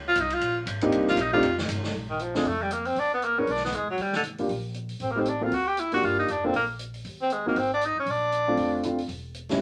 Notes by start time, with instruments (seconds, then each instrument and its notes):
Already playing: upright bass C#2
0.08 tenor saxophone F4
0.15 upright bass C2, hi-hat pedal, ride
0.21 tenor saxophone D#4
0.30 tenor saxophone F4, ride
0.40 upright bass A#1, ride
0.66 upright bass G#1, hi-hat pedal, ride
0.81 grand piano A#3 C4 D4 D#4 G4, ride
0.92 upright bass C2, ride
1.07 tenor saxophone F4, snare
1.16 upright bass A#1, hi-hat pedal, ride
1.21 tenor saxophone D#4
1.33 grand piano A3 C4 D4 D#4 G4, tenor saxophone F4
1.42 upright bass F1, ride
1.58 snare
1.68 upright bass G1, hi-hat pedal, ride
1.84 snare
1.93 upright bass A#1, open hi-hat
2.10 tenor saxophone D#3
2.19 tenor saxophone F3, closed hi-hat
2.35 tenor saxophone G#3, grand piano C4 D4 F4 A4, snare
2.45 upright bass F2, tenor saxophone A3, open hi-hat
2.62 tenor saxophone G3
2.71 tenor saxophone A#3, closed hi-hat
2.85 tenor saxophone C4, open hi-hat
2.96 upright bass E2, tenor saxophone D4, open hi-hat
3.14 tenor saxophone B3
3.22 tenor saxophone A#3, closed hi-hat
3.38 grand piano B3 D4 G#4 A#4, tenor saxophone C#4
3.47 upright bass B1, tenor saxophone D4, open hi-hat
3.56 snare
3.65 tenor saxophone B3, snare
3.72 upright bass E2, tenor saxophone G#3, closed hi-hat
3.90 tenor saxophone F#3
3.97 upright bass D#2, open hi-hat
4.02 tenor saxophone G3
4.13 tenor saxophone D3, snare
4.23 closed hi-hat
4.38 grand piano A#3 D4 F4 G4, open hi-hat
4.49 upright bass A#1, open hi-hat
4.74 closed hi-hat
4.89 open hi-hat
5.00 upright bass A1, tenor saxophone C4, open hi-hat
5.11 tenor saxophone A#3
5.16 grand piano A3 C4 D#4 G4
5.20 tenor saxophone C4
5.25 tenor saxophone D4, closed hi-hat
5.41 grand piano A#3 C4 F#4 A4, tenor saxophone F4
5.51 upright bass D2, tenor saxophone F#4, open hi-hat
5.67 tenor saxophone G4
5.77 tenor saxophone E4, closed hi-hat
5.92 upright bass A1, grand piano A#3 D4 F4 G4, tenor saxophone F#4, open hi-hat
6.02 upright bass G1, tenor saxophone F4, open hi-hat
6.19 tenor saxophone D#4
6.28 upright bass F1, tenor saxophone D4, closed hi-hat
6.44 grand piano A#3 D4 F4 A4, tenor saxophone C4
6.54 upright bass A#1, tenor saxophone A#3, open hi-hat
6.79 closed hi-hat
6.94 open hi-hat
7.05 upright bass D#2, open hi-hat
7.22 tenor saxophone C4
7.30 tenor saxophone G#3, closed hi-hat
7.46 grand piano A#3 C4 D#4 F#4, tenor saxophone A#3
7.55 upright bass G#1, tenor saxophone C4, open hi-hat
7.74 tenor saxophone D4
7.81 closed hi-hat
7.85 tenor saxophone D#4
7.96 tenor saxophone C#4, muted upright bass stroke
8.06 upright bass A#1, open hi-hat
8.11 tenor saxophone D4
8.32 closed hi-hat
8.48 grand piano A3 C4 D4 F4
8.56 upright bass F1, open hi-hat
8.83 grand piano A3 C4 D4 F4, closed hi-hat
8.98 open hi-hat
9.08 upright bass E1, open hi-hat
9.34 closed hi-hat
9.49 grand piano G3 B3 C#4 E4, snare, open hi-hat